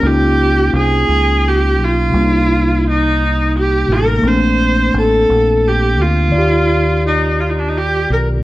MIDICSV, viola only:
0, 0, Header, 1, 2, 480
1, 0, Start_track
1, 0, Tempo, 701754
1, 14, Time_signature, 6, 3, 24, 8
1, 5767, End_track
2, 0, Start_track
2, 0, Title_t, "Viola"
2, 0, Program_c, 0, 41
2, 42, Note_on_c, 0, 67, 87
2, 508, Note_off_c, 0, 67, 0
2, 524, Note_on_c, 0, 68, 98
2, 1012, Note_on_c, 0, 67, 83
2, 1023, Note_off_c, 0, 68, 0
2, 1260, Note_on_c, 0, 65, 83
2, 1271, Note_off_c, 0, 67, 0
2, 1957, Note_off_c, 0, 65, 0
2, 1976, Note_on_c, 0, 63, 85
2, 2408, Note_off_c, 0, 63, 0
2, 2451, Note_on_c, 0, 67, 82
2, 2685, Note_on_c, 0, 70, 79
2, 2696, Note_off_c, 0, 67, 0
2, 2931, Note_on_c, 0, 72, 82
2, 2941, Note_off_c, 0, 70, 0
2, 3393, Note_off_c, 0, 72, 0
2, 3403, Note_on_c, 0, 69, 87
2, 3884, Note_on_c, 0, 67, 82
2, 3895, Note_off_c, 0, 69, 0
2, 4115, Note_on_c, 0, 65, 85
2, 4125, Note_off_c, 0, 67, 0
2, 4824, Note_off_c, 0, 65, 0
2, 4833, Note_on_c, 0, 63, 80
2, 5060, Note_on_c, 0, 65, 58
2, 5071, Note_off_c, 0, 63, 0
2, 5127, Note_on_c, 0, 63, 51
2, 5138, Note_off_c, 0, 65, 0
2, 5192, Note_on_c, 0, 62, 59
2, 5202, Note_off_c, 0, 63, 0
2, 5255, Note_on_c, 0, 63, 71
2, 5265, Note_off_c, 0, 62, 0
2, 5314, Note_on_c, 0, 67, 85
2, 5324, Note_off_c, 0, 63, 0
2, 5544, Note_off_c, 0, 67, 0
2, 5559, Note_on_c, 0, 70, 75
2, 5662, Note_off_c, 0, 70, 0
2, 5767, End_track
0, 0, End_of_file